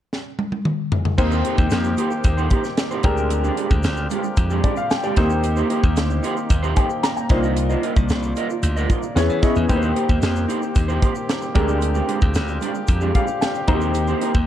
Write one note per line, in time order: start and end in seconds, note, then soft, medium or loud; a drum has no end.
0.13 snare medium
0.39 high tom medium
0.52 high tom medium
0.65 mid tom medium
0.92 floor tom loud
1.05 floor tom medium
1.18 1.41 D#2 loud
1.18 3.03 D#3 medium
1.18 2.11 A#3 medium
1.18 3.03 A#3 medium
1.18 2.12 C4 medium
1.18 5.13 C4 medium
1.18 2.12 D#4 medium
1.18 3.03 G4 medium
1.18 2.12 G4 medium
1.18 2.12 C5 medium
1.18 muted clean electric guitar stroke soft
1.18 kick loud
1.18 crash medium
1.18 shaker medium
1.31 1.44 D#4 medium
1.31 1.44 G4 medium
1.31 1.45 C5 medium
1.31 shaker soft
1.45 1.56 D#4 medium
1.45 1.56 G4 medium
1.45 1.57 C5 medium
1.45 closed hi-hat medium
1.58 1.69 D#2 medium
1.58 muted clean electric guitar stroke soft
1.58 kick medium
1.58 shaker soft
1.70 1.94 F2 medium
1.70 snare loud
1.70 closed hi-hat medium
1.70 shaker medium
1.84 muted clean electric guitar stroke soft
1.84 shaker soft
1.97 2.12 D#4 medium
1.97 2.11 G4 medium
1.97 2.10 C5 medium
1.97 closed hi-hat medium
1.97 shaker soft
2.11 muted clean electric guitar stroke soft
2.11 shaker soft
2.24 2.47 D#2 medium
2.24 muted clean electric guitar stroke soft
2.24 kick medium
2.24 closed hi-hat medium
2.24 shaker medium
2.37 2.49 D#4 medium
2.37 2.50 G4 medium
2.37 2.51 C5 medium
2.37 shaker soft
2.50 2.62 D#4 medium
2.50 2.62 G4 medium
2.50 2.63 C5 medium
2.50 kick medium
2.50 closed hi-hat medium
2.64 muted clean electric guitar stroke soft
2.64 snare soft
2.64 shaker soft
2.77 muted clean electric guitar stroke soft
2.77 snare loud
2.77 closed hi-hat medium
2.77 shaker medium
2.91 3.04 D#4 medium
2.91 3.04 G4 medium
2.91 3.05 C5 medium
2.91 shaker soft
3.03 3.49 D2 medium
3.03 5.15 D3 medium
3.03 3.97 G#3 medium
3.03 5.15 G#3 medium
3.03 3.98 C4 medium
3.03 3.98 D4 medium
3.03 5.15 F4 medium
3.03 7.26 G4 medium
3.03 3.98 G4 medium
3.03 3.98 A#4 medium
3.03 muted clean electric guitar stroke soft
3.03 kick loud
3.03 closed hi-hat medium
3.17 muted clean electric guitar stroke soft
3.17 shaker soft
3.30 muted clean electric guitar stroke soft
3.30 closed hi-hat medium
3.30 shaker medium
3.43 3.56 G#3 medium
3.43 3.57 D4 medium
3.43 3.57 G4 medium
3.43 shaker soft
3.57 3.68 G#3 medium
3.57 3.69 D4 medium
3.57 3.69 G4 medium
3.57 closed hi-hat medium
3.70 3.82 D2 medium
3.70 muted clean electric guitar stroke medium
3.70 kick medium
3.70 shaker soft
3.83 4.06 D2 medium
3.83 snare loud
3.83 closed hi-hat medium
3.83 shaker medium
3.97 muted clean electric guitar stroke soft
3.97 shaker soft
4.10 4.24 G#3 medium
4.10 4.24 D4 medium
4.10 4.23 G4 medium
4.10 closed hi-hat medium
4.10 shaker soft
4.24 muted clean electric guitar stroke soft
4.24 shaker soft
4.36 4.60 F2 medium
4.36 muted clean electric guitar stroke soft
4.36 kick loud
4.36 closed hi-hat medium
4.36 shaker medium
4.50 4.62 G#3 medium
4.50 4.63 D4 medium
4.50 4.64 G4 medium
4.50 shaker soft
4.64 4.75 G#3 medium
4.64 4.75 D4 medium
4.64 4.76 G4 medium
4.64 4.77 D5 medium
4.64 kick medium
4.64 closed hi-hat medium
4.76 4.90 F5 medium
4.76 muted clean electric guitar stroke soft
4.76 shaker soft
4.90 5.03 G5 medium
4.90 muted clean electric guitar stroke soft
4.90 snare loud
4.90 closed hi-hat medium
4.90 shaker medium
5.03 5.18 G#3 medium
5.03 5.16 D4 medium
5.03 5.17 G4 medium
5.03 5.29 D5 medium
5.03 shaker soft
5.16 5.62 D#2 medium
5.16 7.28 D#3 medium
5.16 6.10 A#3 medium
5.16 9.12 A#3 medium
5.16 7.28 C4 medium
5.16 6.10 C4 medium
5.16 5.28 D#4 medium
5.16 6.11 D#4 medium
5.16 6.11 G4 medium
5.16 5.28 G4 medium
5.16 6.11 C5 medium
5.16 5.29 C5 medium
5.16 kick loud
5.16 snare soft
5.16 closed hi-hat medium
5.30 muted clean electric guitar stroke soft
5.30 shaker medium
5.43 muted clean electric guitar stroke soft
5.43 closed hi-hat medium
5.43 shaker medium
5.57 5.69 D#4 medium
5.57 5.69 G4 medium
5.57 5.70 C5 medium
5.57 shaker soft
5.70 5.81 D#4 medium
5.70 5.81 G4 medium
5.70 5.82 C5 medium
5.70 closed hi-hat medium
5.83 5.97 D#2 medium
5.83 muted clean electric guitar stroke soft
5.83 kick medium
5.83 shaker soft
5.96 6.19 D2 medium
5.96 snare loud
5.96 closed hi-hat medium
5.96 shaker medium
6.10 muted clean electric guitar stroke soft
6.10 shaker soft
6.23 6.37 D#4 medium
6.23 6.36 G4 medium
6.23 6.35 C5 medium
6.23 closed hi-hat medium
6.23 shaker soft
6.36 muted clean electric guitar stroke soft
6.36 shaker soft
6.50 6.72 D#2 medium
6.50 muted clean electric guitar stroke soft
6.50 kick medium
6.50 closed hi-hat medium
6.50 shaker medium
6.63 6.75 D#4 medium
6.63 6.76 G4 medium
6.63 6.76 C5 medium
6.63 shaker soft
6.76 6.87 D#4 medium
6.76 6.88 G4 medium
6.76 6.88 C5 medium
6.76 7.02 G5 medium
6.76 kick medium
6.76 closed hi-hat medium
6.89 muted clean electric guitar stroke soft
6.89 shaker soft
7.03 7.16 A#5 medium
7.03 muted clean electric guitar stroke soft
7.03 snare loud
7.03 closed hi-hat medium
7.03 shaker medium
7.16 7.42 G5 medium
7.16 muted clean electric guitar stroke soft
7.16 shaker soft
7.29 7.74 C2 medium
7.29 9.15 C3 medium
7.29 9.14 D#3 medium
7.29 8.23 A#3 medium
7.29 8.23 D4 medium
7.29 8.24 D#4 medium
7.29 7.44 F4 medium
7.29 9.15 F4 medium
7.29 8.24 F4 medium
7.29 7.42 A#4 medium
7.29 8.24 C5 medium
7.29 9.15 D5 medium
7.29 7.42 D#5 medium
7.29 kick loud
7.29 snare soft
7.29 closed hi-hat medium
7.43 7.55 F4 medium
7.43 7.54 A#4 medium
7.43 7.54 D#5 medium
7.43 shaker soft
7.56 muted clean electric guitar stroke soft
7.56 closed hi-hat medium
7.56 shaker medium
7.69 7.81 F4 medium
7.69 7.82 A#4 medium
7.69 7.83 D#5 medium
7.69 shaker soft
7.83 7.94 F4 medium
7.83 7.94 A#4 medium
7.83 7.95 D#5 medium
7.83 closed hi-hat medium
7.96 8.08 C2 medium
7.96 muted clean electric guitar stroke soft
7.96 kick medium
7.96 shaker soft
8.09 8.32 C2 medium
8.09 snare medium
8.09 closed hi-hat medium
8.09 shaker medium
8.23 muted clean electric guitar stroke soft
8.23 shaker soft
8.36 8.50 F4 medium
8.36 8.50 A#4 medium
8.36 8.49 D#5 medium
8.36 closed hi-hat medium
8.36 shaker soft
8.50 muted clean electric guitar stroke soft
8.50 shaker soft
8.63 8.85 D2 loud
8.63 muted clean electric guitar stroke soft
8.63 closed hi-hat medium
8.63 shaker medium
8.76 8.89 F4 medium
8.76 8.89 A#4 medium
8.76 8.90 D#5 medium
8.76 shaker soft
8.90 9.00 F4 medium
8.90 9.01 A#4 medium
8.90 9.01 D#5 medium
8.90 kick medium
8.90 closed hi-hat medium
8.90 shaker soft
9.03 muted clean electric guitar stroke medium
9.03 shaker soft
9.15 9.27 E2 loud
9.15 9.69 E3 medium
9.15 9.39 B3 medium
9.15 9.69 B3 medium
9.15 9.39 C#4 medium
9.15 9.69 C#4 medium
9.15 9.39 E4 medium
9.15 9.40 G#4 medium
9.15 9.69 G#4 medium
9.15 9.40 C#5 medium
9.15 muted clean electric guitar stroke soft
9.15 snare loud
9.15 closed hi-hat medium
9.15 shaker medium
9.29 9.40 E3 loud
9.29 muted clean electric guitar stroke soft
9.29 shaker soft
9.42 9.65 B3 medium
9.42 9.66 C#4 medium
9.42 9.66 E4 medium
9.42 9.56 E4 medium
9.42 9.66 G#4 medium
9.42 9.56 G#4 medium
9.42 9.55 C#5 medium
9.42 9.66 D#5 medium
9.42 kick loud
9.42 snare soft
9.42 closed hi-hat medium
9.42 shaker soft
9.56 9.67 E2 medium
9.56 muted clean electric guitar stroke soft
9.56 shaker soft
9.69 9.92 D#2 medium
9.69 11.54 D#3 medium
9.69 10.62 A#3 medium
9.69 11.53 A#3 medium
9.69 10.62 C4 medium
9.69 14.47 C4 medium
9.69 10.63 D#4 medium
9.69 10.63 G4 medium
9.69 14.47 G4 medium
9.69 9.76 B4 medium
9.69 muted clean electric guitar stroke soft
9.69 kick loud
9.69 closed hi-hat medium
9.69 shaker medium
9.76 10.66 C5 medium
9.82 9.94 D#4 medium
9.82 9.95 G4 medium
9.82 9.96 C5 medium
9.82 shaker soft
9.95 10.06 D#4 medium
9.95 10.07 G4 medium
9.95 10.07 C5 medium
9.95 closed hi-hat medium
10.09 10.20 D#2 medium
10.09 muted clean electric guitar stroke soft
10.09 kick medium
10.09 shaker soft
10.22 10.45 F2 medium
10.22 snare loud
10.22 closed hi-hat medium
10.22 shaker medium
10.35 muted clean electric guitar stroke soft
10.35 shaker soft
10.48 10.62 D#4 medium
10.48 10.62 G4 medium
10.48 10.60 C5 medium
10.48 closed hi-hat medium
10.48 shaker soft
10.62 muted clean electric guitar stroke soft
10.62 shaker soft
10.75 10.98 D#2 medium
10.75 muted clean electric guitar stroke soft
10.75 kick loud
10.75 closed hi-hat medium
10.75 shaker medium
10.88 11.00 D#4 medium
10.88 11.01 G4 medium
10.88 11.02 C5 medium
10.88 shaker soft
11.01 11.13 D#4 medium
11.01 11.13 G4 medium
11.01 11.13 C5 medium
11.01 kick medium
11.01 closed hi-hat medium
11.15 muted clean electric guitar stroke soft
11.15 shaker medium
11.28 muted clean electric guitar stroke soft
11.28 snare loud
11.28 closed hi-hat medium
11.28 shaker medium
11.42 muted clean electric guitar stroke soft
11.42 shaker soft
11.54 12.00 D2 medium
11.54 13.66 D3 medium
11.54 12.48 G#3 medium
11.54 11.69 G#3 medium
11.54 13.66 G#3 medium
11.54 12.48 C4 medium
11.54 12.48 D4 medium
11.54 11.68 D4 medium
11.54 13.66 F4 medium
11.54 12.49 G4 medium
11.54 11.67 G4 medium
11.54 12.49 A#4 medium
11.54 kick loud
11.54 closed hi-hat medium
11.68 11.80 G#3 soft
11.68 11.80 D4 medium
11.68 11.79 G4 medium
11.68 shaker medium
11.81 muted clean electric guitar stroke soft
11.81 closed hi-hat medium
11.81 shaker medium
11.95 12.07 G#3 medium
11.95 12.08 D4 medium
11.95 12.09 G4 medium
11.95 shaker soft
12.08 12.19 G#3 medium
12.08 12.20 D4 medium
12.08 12.20 G4 medium
12.08 closed hi-hat medium
12.21 12.33 D2 medium
12.21 muted clean electric guitar stroke soft
12.21 kick medium
12.21 shaker soft
12.34 12.57 D2 medium
12.34 snare loud
12.34 closed hi-hat medium
12.34 shaker medium
12.48 muted clean electric guitar stroke soft
12.48 shaker soft
12.61 12.75 G#3 medium
12.61 12.75 D4 medium
12.61 12.74 G4 medium
12.61 closed hi-hat medium
12.61 shaker soft
12.75 muted clean electric guitar stroke soft
12.75 shaker soft
12.87 13.11 F2 loud
12.87 muted clean electric guitar stroke soft
12.87 kick medium
12.87 closed hi-hat medium
12.87 shaker medium
13.01 13.13 G#3 medium
13.01 13.14 D4 medium
13.01 13.14 G4 medium
13.01 shaker soft
13.14 13.25 G#3 medium
13.14 13.26 D4 medium
13.14 13.26 G4 medium
13.14 13.40 F5 medium
13.14 kick medium
13.14 closed hi-hat medium
13.27 muted clean electric guitar stroke soft
13.27 shaker medium
13.41 13.66 G5 medium
13.41 muted clean electric guitar stroke soft
13.41 snare loud
13.41 closed hi-hat medium
13.41 shaker medium
13.55 muted clean electric guitar stroke soft
13.55 shaker soft
13.67 14.13 D#2 medium
13.67 14.47 D#3 medium
13.67 14.47 A#3 medium
13.67 14.47 C4 medium
13.67 13.81 D#4 medium
13.67 14.47 D#4 medium
13.67 13.74 F#4 medium
13.67 13.81 G4 medium
13.67 14.47 C5 medium
13.67 13.79 C5 medium
13.67 13.93 A#5 medium
13.67 kick loud
13.67 closed hi-hat medium
13.75 14.47 G4 medium
13.81 13.93 D#4 medium
13.81 13.92 G4 medium
13.81 13.92 C5 medium
13.81 shaker soft
13.94 muted clean electric guitar stroke soft
13.94 closed hi-hat medium
13.94 shaker medium
14.07 14.20 D#4 medium
14.07 14.20 G4 medium
14.07 14.21 C5 medium
14.07 shaker soft
14.21 14.32 D#4 medium
14.21 14.32 G4 medium
14.21 14.33 C5 medium
14.21 closed hi-hat medium
14.34 14.47 D#2 medium
14.34 muted clean electric guitar stroke soft
14.34 kick medium
14.34 shaker soft